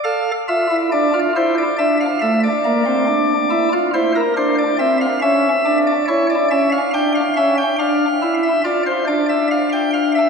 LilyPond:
\new Staff \with { instrumentName = "Pipe organ" } { \time 12/8 \key d \minor \tempo 4. = 47 << { f''8 e''8 d''8 c''16 d''16 e''16 f''16 e''16 d''4.~ d''16 c''16 bes'16 c''16 d''16 e''16 f''16 | e''8. d''16 cis''16 d''16 e''16 f''16 g''16 f''16 e''16 g''16 f''8. e''16 d''16 c''16 d''16 e''16 f''16 g''16 f''16 e''16 | } \\ { a'8 f'16 e'16 d'16 f'16 e'8 d'8 a8 bes16 c'16 d'8 e'16 f'16 e'8 d'8 c'8 | cis'8 d'8 e'8 cis'8 d'8 cis'8 d'8 e'8 f'8 d'4. | } >> }